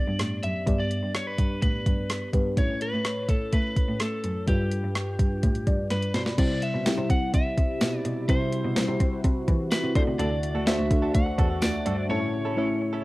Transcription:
Already playing: fm electric piano G2 B3 D4 G4 D5, lead electric guitar D5
0.08 cello G2
0.19 cello A2, cross-stick, closed hi-hat
0.43 cello F#2, lead electric guitar E5, closed hi-hat
0.66 cello G2, fm electric piano G2 B3 D4 G4 D5, kick, closed hi-hat
0.80 lead electric guitar D5
0.91 closed hi-hat
1.03 cello G2
1.14 lead electric guitar C#5, cross-stick, closed hi-hat
1.27 lead electric guitar B4
1.38 cello G2, kick, closed hi-hat
1.62 cello A2, lead electric guitar B4, kick, closed hi-hat
1.86 cello G2, kick, closed hi-hat
2.10 cross-stick, closed hi-hat
2.33 cello G2, fm electric piano B3 D4 G4 B4, kick, closed hi-hat
2.56 cello A2, fm electric piano A2 A3 C#4 E4 C#5, lead electric guitar C#5, kick, closed hi-hat
2.81 lead electric guitar B4, closed hi-hat
2.93 cello A2
3.05 cross-stick, closed hi-hat
3.29 cello A2, lead electric guitar A4, kick, closed hi-hat
3.53 cello A3, lead electric guitar B4, kick, closed hi-hat
3.77 kick, closed hi-hat
3.88 cello A2
4.00 cello A2, lead electric guitar A4, cross-stick, closed hi-hat
4.24 cello F#2, closed hi-hat
4.47 cello G2, fm electric piano G2 G3 D4 F4 B4, lead electric guitar G4, kick, closed hi-hat
4.72 closed hi-hat
4.84 cello G2
4.95 cross-stick, closed hi-hat
5.19 cello G2, kick, closed hi-hat
5.43 cello A2, kick, closed hi-hat
5.55 closed hi-hat
5.67 cello G2, fm electric piano D5, kick, closed hi-hat
5.90 cello G2, lead electric guitar B4, fm electric piano B5, snare, closed hi-hat
6.02 closed hi-hat
6.14 cello B2, lead electric guitar C5, snare, closed hi-hat
6.26 snare
6.38 fm electric piano C3 G3 C4 E4 C5, cello C3, analog synth pad C3 G3 E4, lead electric guitar D5, kick, closed hi-hat, crash
6.62 lead electric guitar E5, closed hi-hat
6.74 cello B2
6.85 fm electric piano G3 C4 E4 G4, snare, closed hi-hat, tambourine
6.98 cello C3
7.10 cello C4, lead electric guitar F#5, kick, closed hi-hat
7.34 cello C3, lead electric guitar E5, kick, closed hi-hat
7.58 cello C3, kick, closed hi-hat
7.81 cello B2, snare, closed hi-hat, tambourine
7.98 lead electric guitar D5
8.05 cello B2, closed hi-hat
8.28 fm electric piano C3 G3 C4 E4 C5, cello C3, analog synth pad F#4, lead electric guitar C5, kick, closed hi-hat
8.53 closed hi-hat
8.64 cello B2
8.76 fm electric piano G3 C4 E4 C5, snare, closed hi-hat, tambourine
8.88 cello C3
9.00 cello C4, kick, closed hi-hat
9.24 cello C3, kick, closed hi-hat
9.48 cello E3, kick, closed hi-hat
9.71 lead electric guitar B4, snare, closed hi-hat, tambourine
9.83 cello C3
9.95 analog synth pad D3 A3 F#4, cello D3, fm electric piano D3 A3 D4 F#4 D5, lead electric guitar C5, kick, closed hi-hat
10.07 cello C3
10.19 cello D2, clean electric guitar D4 F#4 A4, lead electric guitar D5, closed hi-hat
10.31 muted clean electric guitar stroke
10.43 muted clean electric guitar stroke, closed hi-hat
10.55 cello D2, clean electric guitar D4 F#4 A4
10.66 fm electric piano A3 D4 F#4 C5, clean electric guitar D4 F#4 A4, lead electric guitar E5, snare, closed hi-hat, tambourine
10.79 cello D2, muted clean electric guitar stroke
10.90 cello D3, muted clean electric guitar stroke, kick, closed hi-hat
11.02 clean electric guitar D4 F#4 A4
11.14 cello D2, lead electric guitar F#5, muted clean electric guitar stroke, kick, closed hi-hat
11.26 muted clean electric guitar stroke
11.38 cello E2, clean electric guitar D4 F#4 A4, kick, closed hi-hat
11.50 clean electric guitar D4 F#4 A4
11.62 cello D2, lead electric guitar D5, snare, closed hi-hat, tambourine
11.74 muted clean electric guitar stroke
11.86 cello G2, clean electric guitar D4 F#4 A4, closed hi-hat
11.98 muted clean electric guitar stroke
12.09 fm electric piano A2 A3 C#4 E4 C#5, analog synth pad C#3 E4, clean electric guitar C#4 E4 A4, lead electric guitar C#5
12.21 muted clean electric guitar stroke
12.33 muted clean electric guitar stroke
12.45 clean electric guitar C#4 E4 A4
12.57 fm electric piano A3 C#4 E4 C#5, clean electric guitar C#4 E4 A4
12.69 muted clean electric guitar stroke
12.81 muted clean electric guitar stroke
12.93 clean electric guitar C#4 E4 A4

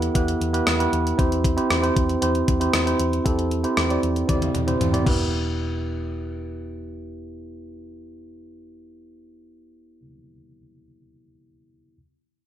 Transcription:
Already playing: tine electric piano B3 E4 G4 A4 B4
0.02 closed hi-hat
0.15 picked electric bass E2, tine electric piano B3 E4 G4 B4, kick, closed hi-hat
0.28 closed hi-hat
0.41 picked electric bass E2, closed hi-hat
0.53 tine electric piano B3 E4 G4 B4, closed hi-hat
0.67 picked electric bass E2, cross-stick, closed hi-hat
0.79 tine electric piano B3 E4 G4 B4, closed hi-hat
0.93 picked electric bass E2, closed hi-hat
1.07 closed hi-hat
1.18 picked electric bass E2, tine electric piano C4 E4 G4 C5, kick, closed hi-hat
1.32 closed hi-hat
1.44 kick, closed hi-hat
1.57 tine electric piano C4 E4 G4 C5, closed hi-hat
1.70 picked electric bass E2, cross-stick, closed hi-hat
1.82 tine electric piano C4 E4 G4 C5, closed hi-hat
1.96 picked electric bass E2, kick, closed hi-hat
2.09 closed hi-hat
2.21 picked electric bass E2, tine electric piano C4 E4 G4 C5, closed hi-hat
2.35 closed hi-hat
2.48 picked electric bass E2, kick, closed hi-hat
2.60 tine electric piano C4 E4 G4 C5, closed hi-hat
2.73 picked electric bass E2, cross-stick, closed hi-hat
2.86 tine electric piano C4 E4 G4 C5, closed hi-hat
3.00 picked electric bass E2, closed hi-hat
3.13 closed hi-hat
3.25 picked electric bass E2, tine electric piano C4 E4 G4 A4, kick, closed hi-hat
3.39 closed hi-hat
3.51 closed hi-hat
3.63 tine electric piano C4 E4 G4 C5, closed hi-hat
3.77 picked electric bass E2, cross-stick, closed hi-hat
3.89 tine electric piano C4 E4 G4 D5, closed hi-hat
4.03 picked electric bass E2, closed hi-hat
4.16 closed hi-hat
4.28 picked electric bass E2, tine electric piano C4 E4 G4 D5, kick, closed hi-hat, high tom
4.42 closed hi-hat, high tom
4.55 picked electric bass E2, closed hi-hat, mid tom
4.67 tine electric piano C4 E4 G4 C5, closed hi-hat, mid tom
4.81 picked electric bass E2, closed hi-hat, mid tom
4.92 tine electric piano C4 E4 G4 D5, closed hi-hat, mid tom
5.04 picked electric bass E1, tine electric piano B3 E4 G4, kick, crash
5.08 tine electric piano B4

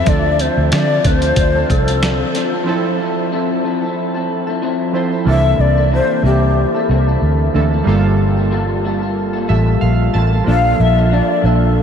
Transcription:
0.05 fingered electric bass D2, clean electric guitar D3 C4 F4, synth keys F3 C4 D4, shakuhachi D5, kick, closed hi-hat
0.09 clean electric guitar A4, synth keys A4
0.39 clean electric guitar D3 C4 F4 A4, shakuhachi C5, closed hi-hat
0.57 fingered electric bass D2
0.72 fingered electric bass D3, clean electric guitar D3 C4 F4 A4, shakuhachi D5, snare, closed hi-hat
1.04 fingered electric bass D2, clean electric guitar D3 C4 F4 A4, shakuhachi C5, kick, closed hi-hat
1.22 clean electric guitar C4 F4 A4, closed hi-hat
1.36 fingered electric bass D2, kick, closed hi-hat
1.55 clean electric guitar C4 F4 A4
1.70 fingered electric bass C2, shakuhachi A4, kick, closed hi-hat
1.88 clean electric guitar C4 F4 A4, closed hi-hat
2.02 clean electric guitar D3 C4 F4 A4, snare, closed hi-hat
2.34 clean electric guitar D3 C4 F4 A4, snare, closed hi-hat
2.52 clean electric guitar C4 F4 A4
2.64 synth keys F3 C4 E4, clean electric guitar F3
2.68 clean electric guitar C4 E4 A4, synth keys A4
3.00 clean electric guitar F3 C4 E4 A4
3.31 clean electric guitar F3 C4 E4 A4
3.64 clean electric guitar F3 C4 E4 A4
3.82 clean electric guitar C4 E4 A4
4.14 clean electric guitar C4 E4 A4
4.47 clean electric guitar C4 E4 A4
4.62 clean electric guitar F3 C4 E4 A4
4.93 synth keys F3 C4 E4 C5, clean electric guitar F3 C4 E4 A4
5.11 clean electric guitar C4 E4 A4
5.25 fingered electric bass C2, clean electric guitar C3 A#3 E4 A4, synth keys E3 A#3 D4
5.29 synth keys A4, shakuhachi E5
5.58 fingered electric bass C2, shakuhachi D5
5.77 clean electric guitar A#3 E4 A4
5.92 clean electric guitar C3 A#3 E4 A4, shakuhachi C5
6.23 fingered electric bass C2, clean electric guitar C3 A#3 E4, shakuhachi G4
6.27 clean electric guitar A4
6.75 clean electric guitar A#3 E4 A4
6.89 fingered electric bass C2, clean electric guitar C3 A#3 E4 A4
7.08 clean electric guitar A#3 E4 A4
7.21 fingered electric bass D2
7.53 fingered electric bass D2, clean electric guitar C3 A#3 E4, synth keys E3 A#3 D4 A4
7.57 clean electric guitar A4
7.73 clean electric guitar A#3 E4 A4
7.84 fingered electric bass G1, synth keys G3 A#3 F4, clean electric guitar G3
7.88 clean electric guitar A#3 F4 A4, synth keys A4
8.37 clean electric guitar A#3 F4 A4
8.51 clean electric guitar G3 A#3 F4 A4
8.84 clean electric guitar G3 A#3 F4 A4
9.02 clean electric guitar A#3 F4 A4
9.34 clean electric guitar A#3 F4 A4
9.48 fingered electric bass A1, clean electric guitar G3 A#3 F4 A4, synth keys E5
9.81 fingered electric bass A#1, synth keys F5
10.13 fingered electric bass A1, clean electric guitar G3 A#3 F4 A4, synth keys A5
10.32 clean electric guitar A#3 F4 A4
10.44 fingered electric bass A#1, synth keys F3 A#3 D4, clean electric guitar A#3 D4
10.49 clean electric guitar F4 A4, synth keys A4, shakuhachi F5
10.79 fingered electric bass A#1, shakuhachi E5
10.97 clean electric guitar D4 F4 A4
11.12 clean electric guitar A#3 D4 F4 A4, shakuhachi D5
11.43 fingered electric bass A#1, clean electric guitar A#3 D4 F4 A4, shakuhachi A4

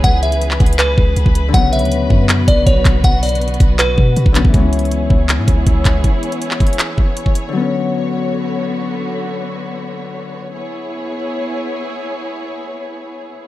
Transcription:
Already playing: string section C#3 E3 G#4 B4, harp E3 G#3 B3 C#4
0.04 808-style bass C#2, synth bell F#5, kick, closed hi-hat
0.23 synth bell E5, closed hi-hat
0.32 closed hi-hat
0.42 closed hi-hat
0.51 clap
0.60 808-style bass C#2, kick, closed hi-hat
0.66 closed hi-hat
0.73 closed hi-hat
0.79 synth bell B4, clap, closed hi-hat
0.98 808-style bass C#2, kick
1.16 808-style bass C#2, closed hi-hat
1.26 808-style bass C#2, kick
1.35 closed hi-hat
1.48 harp D3 F#3
1.54 808-style bass B1, string section B2 B3 F#4, harp B3, synth bell F#5, kick, closed hi-hat
1.60 harp C#3
1.73 synth bell E5, closed hi-hat
1.79 808-style bass D2, closed hi-hat
1.85 closed hi-hat
1.92 closed hi-hat
2.10 808-style bass F#2, kick
2.29 clap, closed hi-hat
2.48 808-style bass B1, synth bell D5, kick, closed hi-hat
2.66 808-style bass B1, synth bell C#5, kick, closed hi-hat
2.85 808-style bass B1, kick, clap, closed hi-hat
3.04 808-style bass B1, synth bell F#5, kick, closed hi-hat
3.23 synth bell D5, closed hi-hat, open hi-hat
3.29 closed hi-hat
3.35 closed hi-hat
3.42 closed hi-hat
3.48 closed hi-hat
3.54 closed hi-hat
3.60 808-style bass B1, kick, closed hi-hat
3.79 synth bell B4, clap, closed hi-hat
3.98 808-style bass B2, kick
4.17 808-style bass B2, closed hi-hat
4.26 808-style bass B1, kick
4.32 harp D3 F#3 B3, clap, closed hi-hat
4.38 harp C#4
4.45 808-style bass B1, harp E3, kick
4.52 808-style bass C#2, harp G#3 B3, string section B3 E4 G#4 C#5, kick, closed hi-hat
4.60 harp C#4
4.73 closed hi-hat
4.79 closed hi-hat
4.85 closed hi-hat
4.92 closed hi-hat
5.10 808-style bass C#2, kick
5.29 clap, closed hi-hat
5.38 808-style bass G#2
5.48 808-style bass C#2, kick, closed hi-hat
5.67 808-style bass C#2, kick, closed hi-hat
5.85 808-style bass C#2, kick, clap, closed hi-hat
6.04 kick, closed hi-hat
6.23 closed hi-hat
6.32 closed hi-hat
6.42 closed hi-hat
6.51 clap
6.60 kick, closed hi-hat
6.67 closed hi-hat
6.73 closed hi-hat
6.79 clap, closed hi-hat
6.98 kick
7.17 closed hi-hat
7.26 kick
7.35 closed hi-hat
7.49 harp D3 F#3
7.54 string section D3 B3 F#4, harp B3
7.60 harp C#4
10.54 string section B3 E4 G#4 C#5

